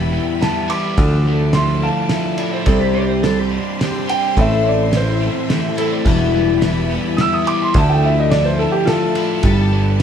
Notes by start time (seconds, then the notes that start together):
Already playing: E1 E2 E3 G3 B3 E4 B4 G5 B5
0.12 B3
0.41 E3 G3 B3 E4 A5, snare, ride
0.68 E4 D6, ride
0.97 D2 D3 F3 A3 D4 E4 D5 A5, kick, ride
1.27 A3
1.53 F3 A3 D4 E4 C6, snare, ride
1.82 D4 F5 A5
2.09 F3 A3 D4 E4, snare, ride
2.38 E4 D5, ride
2.53 C5
2.64 C2 C3 G3 C4 G4 A4 C5 C6, kick, ride
2.69 D4 G4
2.80 G4
2.94 C4 D5
3.08 C5
3.23 G3 C4 D4 G4 A4, snare, ride
3.39 G4
3.51 D4 D5
3.80 G3 C4 D4 G4 C5, snare, ride
4.07 G4 G5, ride
4.36 A1 A2 E3 A3 C4 E4 A4 E5, kick, ride
4.40 E5
4.63 A3 C#5
4.68 D5
4.92 E3 A3 C4 E4, snare, ride
4.96 C5
5.21 A3 C4 E4
5.47 E3 A3 C4 E4, snare, ride
5.75 A3 C4 E4 A4, ride
5.92 D5
6.05 E1 E2 B2 E3 G3 B3 E4 G4 B4 E5 B5, kick, ride
6.34 G3
6.61 E3 G3 B3 E4, snare, ride
6.91 E3 G3 B3 E4
7.16 E3 G3 D#6, snare, ride
7.21 B3 E4 E6
7.33 D#6
7.45 E4 D6, ride
7.62 C6
7.73 D2 D3 F3 A3 D4 D5 A5, kick, ride
7.77 E4 A5
7.89 G5
8.03 A3 E5
8.20 D#5
8.30 F3 A3 D4 D5, snare, ride
8.35 E4
8.45 C5
8.59 D4 A4
8.72 G4
8.85 F3 F4 A4, snare, ride
8.90 A3 D4 E4
9.15 A3 D4 E4, ride
9.43 G1 G3 B3 D4 G4 A4 B4, kick, ride
9.72 B3